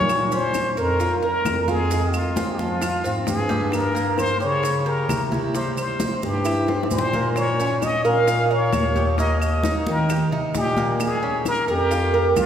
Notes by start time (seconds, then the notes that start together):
Already playing: A#2 C#5
0.01 low conga
0.09 high bongo, high conga, claves, maracas
0.32 C#4 C5, high conga, maracas
0.54 high bongo, high conga, claves, maracas
0.77 F2 A#4, high conga, maracas
1.00 F4, high bongo, high conga, maracas
1.22 A#4, high conga
1.45 F2, high bongo, low bongo, high conga, claves, maracas
1.68 F4 G#4, high conga, maracas
1.91 G#3, high bongo, high conga, maracas
2.14 F4, high conga, claves, maracas
2.36 C4, high bongo, high conga, maracas
2.53 G4
2.59 F3 F4, high bongo, high conga, maracas
2.82 F4, high bongo, high conga, claves, maracas
3.04 G#2 C4, high bongo, high conga, maracas
3.27 G2 G#4, high bongo, low bongo, high conga, maracas
3.49 G3, high bongo, high conga, maracas
3.72 A#4, high bongo, high conga, claves, maracas
3.95 A#3, high conga, maracas
4.18 C5, high bongo, high conga, claves, maracas
4.40 C#3 G4 C#5, high conga, maracas
4.63 C#4, high bongo, high conga, maracas
4.86 G4 A#4, high conga
5.08 C3, high bongo, low bongo, high conga, claves, maracas
5.32 E4, high conga, maracas
5.55 G3 C5, high bongo, high conga, maracas
5.77 C5, high conga, claves, maracas
6.00 C4, high bongo, high conga, maracas
6.22 G2 G4, high bongo, high conga, maracas
6.45 E4, high bongo, high conga, claves, maracas
6.68 C4, high bongo, high conga
6.83 high bongo
6.90 A#2 C5, high conga, maracas
6.99 low bongo
7.13 A#3, low bongo, high conga, maracas
7.36 C#5, high bongo, high conga, claves, maracas
7.59 C#4, high conga, maracas
7.82 D#5, high bongo, high conga, claves, maracas
8.04 A#2 A#4 F5, high conga, maracas
8.27 F4, high bongo, high conga, maracas
8.51 A#4 C#5, high conga
8.73 D#2, high bongo, low bongo, high conga, claves, maracas
8.96 G4, high conga, maracas
9.18 A#3 D#5, high bongo, high conga, maracas
9.41 D#5, high conga, claves, maracas
9.63 D#4, high bongo, high conga, maracas
9.86 D#3 A#4, high bongo, high conga, maracas
10.09 G4, high bongo, high conga, claves, maracas
10.32 C3 D#4, high bongo, high conga
10.54 A#2 G4, high bongo, low bongo, high conga, maracas
10.77 A#3, high bongo, high conga, maracas
11.00 G#4, high bongo, high conga, claves, maracas
11.23 C#4, high conga
11.45 A#4, high bongo, high conga, claves, maracas
11.68 F2 G4 A#4, high conga, maracas
11.91 F4, high bongo, high conga, maracas
12.14 A#4, high conga
12.36 C2 F4, high bongo, low bongo, high conga, claves, maracas